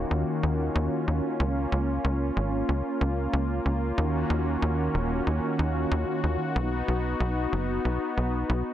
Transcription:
0.00 1.37 D#3 medium
0.00 1.37 A#3 medium
0.00 3.94 C#4 medium
0.00 6.52 F4 medium
0.00 1.36 F#4 medium
0.11 0.24 D#2 medium
0.43 0.70 D#2 medium
0.75 0.89 D#2 loud
1.08 1.21 D#2 medium
1.40 1.67 C#2 loud
1.40 6.52 A#3 medium
1.72 1.99 C#2 loud
2.04 2.31 C#2 loud
2.37 2.63 G#1 medium
2.69 2.82 C#2 medium
3.01 3.28 C#2 medium
3.33 3.60 C#2 loud
3.66 3.92 C#2 medium
3.97 4.25 D#2 loud
3.97 6.53 D#3 medium
3.97 6.53 C#4 medium
3.97 8.74 F#4 medium
4.30 4.57 D#2 loud
4.62 4.89 D#2 loud
4.94 5.21 D#1 loud
5.27 5.40 D#2 medium
5.59 5.86 D#2 medium
5.91 6.05 D#2 loud
6.24 6.37 D#2 medium
6.55 6.83 B1 loud
6.55 8.74 B3 medium
6.55 8.74 D#4 medium
6.88 7.15 B1 medium
7.20 7.47 B1 loud
7.53 7.79 F#1 loud
7.85 7.98 B1 medium
8.17 8.44 B1 medium
8.49 8.63 B1 loud

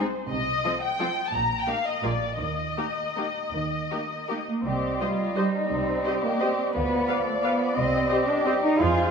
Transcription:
0.00 0.16 C5 medium
0.31 0.58 C2 medium
0.31 0.58 C3 medium
0.31 0.78 D#5 medium
0.65 0.73 F3 soft
0.65 0.73 C4 soft
0.65 0.73 F4 soft
0.65 0.73 A4 soft
0.84 1.26 G5 medium
0.99 1.08 F3 soft
0.99 1.08 C4 soft
0.99 1.07 F4 soft
0.99 1.07 A4 soft
1.27 1.34 A5 medium
1.33 1.60 A#1 medium
1.33 1.60 A#2 medium
1.33 1.58 A#5 medium
1.60 1.68 G5 medium
1.67 1.75 A#3 soft
1.67 1.75 D#4 soft
1.67 1.75 G4 soft
1.67 1.75 A#4 soft
1.67 1.85 F5 medium
1.86 2.03 D#5 medium
2.03 2.32 A#1 soft
2.03 2.32 A#2 soft
2.03 2.12 A#3 soft
2.03 2.11 F4 soft
2.03 2.11 G#4 soft
2.03 2.11 A#4 soft
2.03 2.40 D5 medium
2.39 2.70 D#2 soft
2.39 2.69 D#3 soft
2.39 4.45 D#5 soft
2.77 2.85 A#3 soft
2.77 2.85 D#4 soft
2.77 2.86 G4 soft
2.77 2.86 A#4 soft
3.17 3.25 A#3 soft
3.17 3.25 D#4 soft
3.17 3.25 G4 soft
3.17 3.25 A#4 soft
3.54 3.84 D#2 soft
3.54 3.84 D#3 soft
3.91 4.00 A#3 soft
3.91 3.99 D#4 soft
3.91 4.00 G4 soft
3.91 4.00 A#4 soft
4.28 4.38 A#3 soft
4.28 4.38 D#4 soft
4.28 4.37 G4 soft
4.28 4.36 A#4 soft
4.49 4.65 A#3 soft
4.65 4.93 C2 medium
4.65 6.70 G3 soft
4.65 5.01 C4 medium
4.65 4.98 G4 soft
4.65 6.70 D#5 soft
5.00 5.35 G3 medium
5.00 5.36 F4 soft
5.00 5.09 G4 soft
5.00 5.14 G4 soft
5.00 5.09 C5 soft
5.00 5.08 D#5 soft
5.00 5.14 D#5 soft
5.36 5.70 G3 soft
5.36 6.06 D#4 soft
5.36 5.48 G4 soft
5.36 5.44 G4 soft
5.36 5.44 C5 soft
5.36 5.49 D#5 soft
5.36 5.44 D#5 soft
5.71 5.98 C2 medium
5.71 6.22 C4 medium
6.05 6.18 G4 soft
6.05 6.75 G4 medium
6.05 6.14 G4 soft
6.05 6.14 C5 soft
6.05 6.18 D#5 soft
6.05 6.14 D#5 soft
6.23 6.41 A#3 medium
6.40 6.74 C4 medium
6.40 6.49 G4 soft
6.40 6.53 G4 soft
6.40 6.49 C5 soft
6.40 6.48 D#5 soft
6.40 6.54 D#5 soft
6.74 7.01 D2 medium
6.74 7.78 F3 soft
6.74 7.25 B3 medium
6.74 7.08 B4 medium
6.74 7.77 D5 soft
7.08 7.17 B4 soft
7.08 7.22 B4 soft
7.08 7.77 D5 medium
7.08 7.16 F5 soft
7.08 7.21 F5 soft
7.26 7.43 A3 medium
7.43 7.75 B3 medium
7.43 7.51 B4 soft
7.43 7.56 B4 soft
7.43 7.51 F5 soft
7.43 7.56 F5 soft
7.75 8.03 C2 medium
7.75 8.80 G3 medium
7.75 8.27 C4 medium
7.75 8.79 D#5 soft
7.75 8.10 D#5 medium
8.10 8.18 G4 soft
8.10 8.23 G4 soft
8.10 8.80 G4 medium
8.10 8.18 C5 soft
8.10 8.18 D#5 soft
8.10 8.23 D#5 soft
8.27 8.46 D4 medium
8.46 8.53 C4 medium
8.46 8.54 G4 soft
8.46 8.59 G4 soft
8.46 8.54 C5 soft
8.46 8.54 D#5 soft
8.46 8.59 D#5 soft
8.63 8.79 D#4 medium
8.79 9.07 F2 medium
8.79 9.11 G#3 medium
8.79 9.11 F4 medium
8.79 9.11 G#4 medium
8.79 9.11 C5 medium

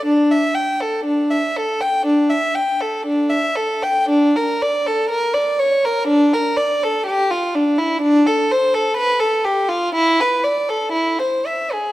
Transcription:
0.05 0.30 D4 medium
0.31 0.56 E5 medium
0.55 0.80 G5 medium
0.81 1.06 A4 medium
1.04 1.30 D4 medium
1.30 1.56 E5 medium
1.56 1.82 A4 medium
1.80 2.06 G5 medium
2.06 2.31 D4 medium
2.30 2.56 E5 medium
2.55 2.80 G5 medium
2.81 3.06 A4 medium
3.05 3.30 D4 medium
3.30 3.56 E5 medium
3.55 3.82 A4 medium
3.83 4.10 G5 medium
4.09 4.35 D4 medium
4.36 4.62 A#4 medium
4.62 4.87 D5 medium
4.86 5.11 A4 medium
5.09 5.34 A#4 medium
5.34 5.59 D5 medium
5.59 5.84 C#5 medium
5.85 6.09 A#4 medium
6.08 6.32 D4 medium
6.33 6.58 A#4 medium
6.57 6.82 D5 medium
6.83 7.08 A4 medium
7.06 7.30 G4 medium
7.31 7.55 F4 medium
7.55 7.79 D4 medium
7.78 8.02 E4 medium
8.01 8.25 D4 medium
8.26 8.50 A4 medium
8.51 8.74 C5 medium
8.74 8.97 A4 medium
8.96 9.20 B4 medium
9.20 9.44 A4 medium
9.45 9.69 G4 medium
9.69 9.93 F4 medium
9.95 10.18 E4 medium
10.20 10.43 B4 medium
10.43 10.67 D5 medium
10.69 10.92 A4 medium
10.92 11.16 E4 medium
11.19 11.44 C5 medium
11.46 11.71 E5 medium
11.72 11.92 G#4 medium

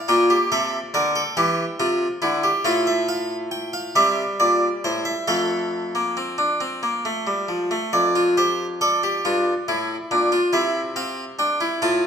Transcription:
0.08 0.35 A#2 medium
0.08 2.61 A#3 medium
0.08 0.29 F4 medium
0.08 0.35 G5 medium
0.30 0.51 G4 medium
0.52 0.78 C3 medium
0.52 0.78 A4 medium
0.52 0.78 E5 medium
0.94 1.20 D3 medium
0.94 1.15 A#4 medium
0.94 1.21 D5 medium
1.16 1.36 A4 medium
1.37 1.63 E3 medium
1.37 1.63 G4 medium
1.37 2.61 G5 medium
1.80 2.06 C3 medium
1.80 2.06 F4 medium
2.22 2.49 D3 medium
2.22 2.43 E4 medium
2.44 2.64 G4 medium
2.65 3.91 A2 medium
2.65 3.91 A3 medium
2.65 3.91 F4 medium
2.65 2.86 F5 medium
2.87 3.08 E5 medium
3.09 3.35 F5 medium
3.51 3.72 G5 medium
3.73 3.94 F5 medium
3.96 4.22 C3 medium
3.96 5.24 G3 medium
3.96 5.24 G4 medium
3.96 4.23 E5 loud
4.40 4.67 A#2 medium
4.40 4.67 D5 medium
4.84 5.12 A2 medium
4.84 5.05 C5 medium
5.05 5.27 E5 medium
5.28 7.45 F2 medium
5.28 5.92 A3 medium
5.28 7.45 A4 medium
5.28 7.45 F5 medium
5.95 6.16 A#3 medium
6.17 6.38 C4 medium
6.38 6.60 D4 medium
6.61 6.82 C4 medium
6.83 7.04 A#3 medium
7.05 7.26 A3 medium
7.27 7.48 G3 medium
7.49 7.70 F3 medium
7.71 7.92 A3 medium
7.93 9.21 F2 medium
7.93 8.20 D5 medium
8.16 8.37 F4 medium
8.38 8.65 G4 medium
8.38 8.65 C5 medium
8.81 9.02 A4 medium
8.81 10.50 D5 medium
9.03 9.24 G4 medium
9.25 9.52 G2 medium
9.25 9.52 F4 medium
9.68 9.95 A2 medium
9.68 9.95 E4 medium
10.11 10.38 A#2 medium
10.11 10.32 D4 medium
10.32 10.53 F4 medium
10.53 11.78 C3 medium
10.53 10.80 E4 medium
10.53 10.80 E5 medium
10.96 11.23 C4 medium
10.96 11.23 F5 medium
11.39 11.60 D4 medium
11.39 11.66 G5 medium
11.61 11.81 E4 medium
11.82 12.07 A2 medium
11.82 12.07 F4 medium
11.82 12.07 A5 medium

